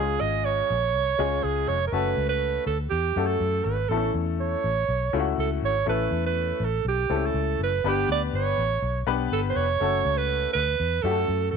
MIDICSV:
0, 0, Header, 1, 4, 480
1, 0, Start_track
1, 0, Tempo, 492611
1, 1883, Time_signature, 4, 2, 24, 8
1, 11273, End_track
2, 0, Start_track
2, 0, Title_t, "Alto saxophone"
2, 0, Program_c, 0, 65
2, 0, Note_on_c, 0, 68, 89
2, 202, Note_on_c, 0, 75, 88
2, 217, Note_off_c, 0, 68, 0
2, 440, Note_on_c, 0, 73, 87
2, 454, Note_off_c, 0, 75, 0
2, 1398, Note_on_c, 0, 68, 82
2, 1413, Note_off_c, 0, 73, 0
2, 1640, Note_on_c, 0, 73, 83
2, 1655, Note_off_c, 0, 68, 0
2, 1813, Note_off_c, 0, 73, 0
2, 1825, Note_on_c, 0, 70, 66
2, 1880, Note_on_c, 0, 71, 96
2, 1895, Note_off_c, 0, 70, 0
2, 2227, Note_off_c, 0, 71, 0
2, 2233, Note_on_c, 0, 71, 85
2, 2572, Note_off_c, 0, 71, 0
2, 2600, Note_on_c, 0, 69, 74
2, 2708, Note_off_c, 0, 69, 0
2, 2826, Note_on_c, 0, 67, 86
2, 3185, Note_on_c, 0, 69, 81
2, 3200, Note_off_c, 0, 67, 0
2, 3550, Note_on_c, 0, 71, 71
2, 3565, Note_off_c, 0, 69, 0
2, 3790, Note_on_c, 0, 69, 82
2, 3805, Note_off_c, 0, 71, 0
2, 4036, Note_off_c, 0, 69, 0
2, 4289, Note_on_c, 0, 73, 79
2, 5206, Note_off_c, 0, 73, 0
2, 5257, Note_on_c, 0, 69, 72
2, 5361, Note_off_c, 0, 69, 0
2, 5504, Note_on_c, 0, 73, 83
2, 5717, Note_off_c, 0, 73, 0
2, 5741, Note_on_c, 0, 71, 86
2, 6067, Note_off_c, 0, 71, 0
2, 6102, Note_on_c, 0, 71, 88
2, 6476, Note_on_c, 0, 69, 82
2, 6491, Note_off_c, 0, 71, 0
2, 6699, Note_off_c, 0, 69, 0
2, 6706, Note_on_c, 0, 67, 87
2, 7073, Note_on_c, 0, 69, 76
2, 7087, Note_off_c, 0, 67, 0
2, 7418, Note_off_c, 0, 69, 0
2, 7440, Note_on_c, 0, 71, 91
2, 7678, Note_on_c, 0, 67, 96
2, 7693, Note_off_c, 0, 71, 0
2, 7900, Note_off_c, 0, 67, 0
2, 7910, Note_on_c, 0, 74, 87
2, 8012, Note_off_c, 0, 74, 0
2, 8140, Note_on_c, 0, 73, 85
2, 8789, Note_off_c, 0, 73, 0
2, 9089, Note_on_c, 0, 69, 80
2, 9165, Note_off_c, 0, 69, 0
2, 9256, Note_on_c, 0, 72, 81
2, 9314, Note_on_c, 0, 73, 92
2, 9329, Note_off_c, 0, 72, 0
2, 9913, Note_on_c, 0, 71, 92
2, 9928, Note_off_c, 0, 73, 0
2, 10258, Note_off_c, 0, 71, 0
2, 10264, Note_on_c, 0, 71, 89
2, 10742, Note_on_c, 0, 69, 95
2, 10757, Note_off_c, 0, 71, 0
2, 11211, Note_off_c, 0, 69, 0
2, 11217, Note_on_c, 0, 69, 82
2, 11273, Note_off_c, 0, 69, 0
2, 11273, End_track
3, 0, Start_track
3, 0, Title_t, "Upright piano"
3, 0, Program_c, 1, 0
3, 0, Note_on_c, 1, 56, 72
3, 0, Note_on_c, 1, 61, 57
3, 0, Note_on_c, 1, 65, 64
3, 0, Note_on_c, 1, 68, 72
3, 699, Note_off_c, 1, 56, 0
3, 705, Note_off_c, 1, 61, 0
3, 707, Note_off_c, 1, 65, 0
3, 708, Note_off_c, 1, 68, 0
3, 1157, Note_on_c, 1, 56, 82
3, 1163, Note_on_c, 1, 61, 73
3, 1166, Note_on_c, 1, 65, 68
3, 1170, Note_on_c, 1, 68, 82
3, 1713, Note_off_c, 1, 56, 0
3, 1716, Note_off_c, 1, 61, 0
3, 1718, Note_off_c, 1, 65, 0
3, 1720, Note_off_c, 1, 68, 0
3, 1872, Note_on_c, 1, 57, 63
3, 1880, Note_on_c, 1, 61, 60
3, 1884, Note_on_c, 1, 66, 64
3, 1890, Note_on_c, 1, 69, 69
3, 2615, Note_off_c, 1, 57, 0
3, 2619, Note_off_c, 1, 61, 0
3, 2621, Note_off_c, 1, 66, 0
3, 2624, Note_off_c, 1, 69, 0
3, 3085, Note_on_c, 1, 57, 67
3, 3087, Note_on_c, 1, 61, 59
3, 3092, Note_on_c, 1, 66, 58
3, 3096, Note_on_c, 1, 69, 67
3, 3637, Note_off_c, 1, 57, 0
3, 3638, Note_off_c, 1, 61, 0
3, 3640, Note_off_c, 1, 66, 0
3, 3642, Note_off_c, 1, 69, 0
3, 3807, Note_on_c, 1, 57, 60
3, 3808, Note_on_c, 1, 59, 47
3, 3813, Note_on_c, 1, 64, 63
3, 3818, Note_on_c, 1, 69, 71
3, 3862, Note_off_c, 1, 59, 0
3, 3868, Note_on_c, 1, 61, 60
3, 4543, Note_off_c, 1, 57, 0
3, 4545, Note_off_c, 1, 64, 0
3, 4548, Note_off_c, 1, 69, 0
3, 4573, Note_off_c, 1, 61, 0
3, 5000, Note_on_c, 1, 57, 77
3, 5001, Note_on_c, 1, 61, 76
3, 5004, Note_on_c, 1, 64, 72
3, 5007, Note_on_c, 1, 65, 67
3, 5062, Note_off_c, 1, 65, 0
3, 5064, Note_on_c, 1, 66, 81
3, 5554, Note_off_c, 1, 57, 0
3, 5555, Note_off_c, 1, 61, 0
3, 5557, Note_off_c, 1, 64, 0
3, 5587, Note_off_c, 1, 66, 0
3, 5709, Note_on_c, 1, 57, 73
3, 5716, Note_on_c, 1, 61, 65
3, 5717, Note_on_c, 1, 64, 64
3, 5724, Note_on_c, 1, 69, 71
3, 6454, Note_off_c, 1, 57, 0
3, 6457, Note_off_c, 1, 61, 0
3, 6458, Note_off_c, 1, 64, 0
3, 6461, Note_off_c, 1, 69, 0
3, 6912, Note_on_c, 1, 57, 63
3, 6913, Note_on_c, 1, 60, 50
3, 6920, Note_on_c, 1, 64, 59
3, 6923, Note_on_c, 1, 69, 67
3, 6975, Note_off_c, 1, 60, 0
3, 6976, Note_on_c, 1, 61, 64
3, 7471, Note_off_c, 1, 57, 0
3, 7475, Note_off_c, 1, 64, 0
3, 7476, Note_off_c, 1, 69, 0
3, 7503, Note_off_c, 1, 61, 0
3, 7643, Note_on_c, 1, 59, 71
3, 7645, Note_on_c, 1, 62, 61
3, 7651, Note_on_c, 1, 67, 62
3, 7656, Note_on_c, 1, 71, 81
3, 8381, Note_off_c, 1, 59, 0
3, 8382, Note_off_c, 1, 62, 0
3, 8385, Note_off_c, 1, 67, 0
3, 8388, Note_off_c, 1, 71, 0
3, 8834, Note_on_c, 1, 59, 87
3, 8837, Note_on_c, 1, 62, 73
3, 8842, Note_on_c, 1, 67, 71
3, 8842, Note_on_c, 1, 71, 89
3, 9392, Note_off_c, 1, 59, 0
3, 9394, Note_off_c, 1, 62, 0
3, 9396, Note_off_c, 1, 67, 0
3, 9396, Note_off_c, 1, 71, 0
3, 9552, Note_on_c, 1, 57, 69
3, 9559, Note_on_c, 1, 61, 59
3, 9564, Note_on_c, 1, 66, 61
3, 9572, Note_on_c, 1, 69, 76
3, 10296, Note_off_c, 1, 57, 0
3, 10299, Note_off_c, 1, 61, 0
3, 10302, Note_off_c, 1, 66, 0
3, 10305, Note_off_c, 1, 69, 0
3, 10757, Note_on_c, 1, 57, 66
3, 10760, Note_on_c, 1, 61, 58
3, 10766, Note_on_c, 1, 66, 66
3, 10769, Note_on_c, 1, 67, 62
3, 10824, Note_off_c, 1, 67, 0
3, 10825, Note_on_c, 1, 69, 70
3, 11273, Note_off_c, 1, 57, 0
3, 11273, Note_off_c, 1, 61, 0
3, 11273, Note_off_c, 1, 66, 0
3, 11273, Note_off_c, 1, 69, 0
3, 11273, End_track
4, 0, Start_track
4, 0, Title_t, "Fingered electric bass"
4, 0, Program_c, 2, 33
4, 0, Note_on_c, 2, 37, 89
4, 161, Note_off_c, 2, 37, 0
4, 206, Note_on_c, 2, 32, 90
4, 595, Note_off_c, 2, 32, 0
4, 686, Note_on_c, 2, 34, 76
4, 925, Note_off_c, 2, 34, 0
4, 925, Note_on_c, 2, 36, 87
4, 1119, Note_off_c, 2, 36, 0
4, 1158, Note_on_c, 2, 37, 87
4, 1355, Note_off_c, 2, 37, 0
4, 1402, Note_on_c, 2, 37, 87
4, 1597, Note_off_c, 2, 37, 0
4, 1635, Note_on_c, 2, 29, 86
4, 1833, Note_off_c, 2, 29, 0
4, 1873, Note_on_c, 2, 30, 99
4, 2072, Note_off_c, 2, 30, 0
4, 2112, Note_on_c, 2, 37, 91
4, 2506, Note_off_c, 2, 37, 0
4, 2596, Note_on_c, 2, 38, 74
4, 2794, Note_off_c, 2, 38, 0
4, 2840, Note_on_c, 2, 40, 78
4, 3036, Note_off_c, 2, 40, 0
4, 3080, Note_on_c, 2, 42, 74
4, 3276, Note_off_c, 2, 42, 0
4, 3315, Note_on_c, 2, 42, 85
4, 3513, Note_off_c, 2, 42, 0
4, 3560, Note_on_c, 2, 32, 84
4, 3756, Note_off_c, 2, 32, 0
4, 3794, Note_on_c, 2, 33, 83
4, 3992, Note_off_c, 2, 33, 0
4, 4036, Note_on_c, 2, 40, 93
4, 4429, Note_off_c, 2, 40, 0
4, 4522, Note_on_c, 2, 33, 79
4, 4717, Note_off_c, 2, 33, 0
4, 4760, Note_on_c, 2, 35, 81
4, 4956, Note_off_c, 2, 35, 0
4, 5000, Note_on_c, 2, 37, 81
4, 5196, Note_off_c, 2, 37, 0
4, 5239, Note_on_c, 2, 37, 79
4, 5435, Note_off_c, 2, 37, 0
4, 5477, Note_on_c, 2, 32, 86
4, 5674, Note_off_c, 2, 32, 0
4, 5717, Note_on_c, 2, 33, 89
4, 5914, Note_off_c, 2, 33, 0
4, 5954, Note_on_c, 2, 40, 98
4, 6348, Note_off_c, 2, 40, 0
4, 6431, Note_on_c, 2, 33, 80
4, 6631, Note_off_c, 2, 33, 0
4, 6673, Note_on_c, 2, 35, 85
4, 6872, Note_off_c, 2, 35, 0
4, 6914, Note_on_c, 2, 37, 71
4, 7112, Note_off_c, 2, 37, 0
4, 7152, Note_on_c, 2, 37, 87
4, 7351, Note_off_c, 2, 37, 0
4, 7393, Note_on_c, 2, 30, 92
4, 7592, Note_off_c, 2, 30, 0
4, 7640, Note_on_c, 2, 31, 94
4, 7836, Note_off_c, 2, 31, 0
4, 7876, Note_on_c, 2, 38, 82
4, 8074, Note_off_c, 2, 38, 0
4, 8116, Note_on_c, 2, 31, 75
4, 8314, Note_off_c, 2, 31, 0
4, 8356, Note_on_c, 2, 33, 75
4, 8554, Note_off_c, 2, 33, 0
4, 8597, Note_on_c, 2, 35, 92
4, 8794, Note_off_c, 2, 35, 0
4, 8834, Note_on_c, 2, 35, 84
4, 9033, Note_off_c, 2, 35, 0
4, 9078, Note_on_c, 2, 31, 94
4, 9275, Note_off_c, 2, 31, 0
4, 9313, Note_on_c, 2, 29, 85
4, 9512, Note_off_c, 2, 29, 0
4, 9557, Note_on_c, 2, 30, 105
4, 9755, Note_off_c, 2, 30, 0
4, 9792, Note_on_c, 2, 37, 88
4, 10187, Note_off_c, 2, 37, 0
4, 10280, Note_on_c, 2, 38, 76
4, 10476, Note_off_c, 2, 38, 0
4, 10521, Note_on_c, 2, 40, 76
4, 10717, Note_off_c, 2, 40, 0
4, 10753, Note_on_c, 2, 42, 80
4, 10952, Note_off_c, 2, 42, 0
4, 10994, Note_on_c, 2, 42, 84
4, 11193, Note_off_c, 2, 42, 0
4, 11237, Note_on_c, 2, 32, 84
4, 11273, Note_off_c, 2, 32, 0
4, 11273, End_track
0, 0, End_of_file